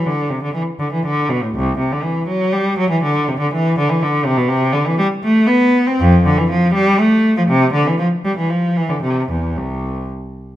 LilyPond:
\new Staff \with { instrumentName = "Cello" } { \clef bass \time 3/4 \key d \mixolydian \tempo 4 = 120 d8 c16 d16 e8 d16 e16 d8 b,16 a,16 | c,8 c16 d16 e8 fis8 g8 fis16 e16 | d8 c16 d16 e8 d16 e16 d8 c16 b,16 | \key c \major c8 d16 e16 g8 a8 b8. c'16 |
f,8 d16 e16 f8 g8 a8. f16 | c8 d16 e16 f8 g16 e16 f8 e16 d16 | c8 e,8 c,4 r4 | }